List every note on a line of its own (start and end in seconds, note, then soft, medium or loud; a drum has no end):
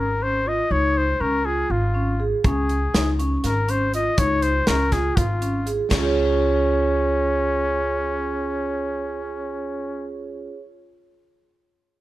0.00 0.59 G#1 medium
0.00 0.25 A#4 medium
0.22 0.37 C#4 medium
0.22 0.50 C5 medium
0.46 0.61 F4 medium
0.46 0.73 D#5 medium
0.70 1.12 C#2 medium
0.70 1.01 D#4 medium
0.70 0.99 C#5 medium
0.98 1.22 C5 medium
1.20 1.62 C#2 medium
1.20 1.36 C#4 medium
1.20 1.47 A#4 medium
1.45 1.75 F4 medium
1.45 1.73 G#4 medium
1.70 2.32 G#1 medium
1.70 2.26 F4 medium
1.94 2.10 C#4 medium
2.20 2.35 G#4 medium
2.44 2.86 C#2 medium
2.44 2.75 C#4 medium
2.44 3.13 G#4 medium
2.44 kick medium
2.44 closed hi-hat medium
2.69 closed hi-hat soft
2.94 3.36 C#2 medium
2.94 3.09 D#4 medium
2.94 snare medium
2.94 closed hi-hat medium
3.19 3.49 C#4 medium
3.19 closed hi-hat soft
3.44 4.06 G#1 medium
3.44 3.72 A#4 medium
3.44 snare soft
3.44 closed hi-hat medium
3.68 3.83 C#4 medium
3.68 3.94 C5 medium
3.68 closed hi-hat soft
3.94 4.09 F4 medium
3.94 4.20 D#5 medium
3.94 closed hi-hat medium
4.18 4.59 C#2 medium
4.18 4.48 D#4 medium
4.18 4.44 C#5 medium
4.18 kick medium
4.18 closed hi-hat medium
4.42 4.69 C5 medium
4.42 closed hi-hat soft
4.67 5.09 C#2 medium
4.67 4.83 C#4 medium
4.67 4.94 A#4 medium
4.67 snare medium
4.67 closed hi-hat medium
4.92 5.23 F4 medium
4.92 5.18 G#4 medium
4.92 kick medium
4.92 snare soft
4.92 closed hi-hat medium
5.16 5.79 G#1 medium
5.16 5.72 F4 medium
5.16 kick medium
5.16 closed hi-hat medium
5.42 5.57 C#4 medium
5.42 closed hi-hat soft
5.66 5.81 G#4 medium
5.66 closed hi-hat medium
5.91 10.46 C#2 medium
5.91 10.13 C#4 medium
5.91 10.47 C#4 medium
5.91 kick medium
5.91 snare medium
5.91 crash medium
5.95 10.51 F4 medium
5.99 10.55 G#4 medium
5.99 10.59 C#5 medium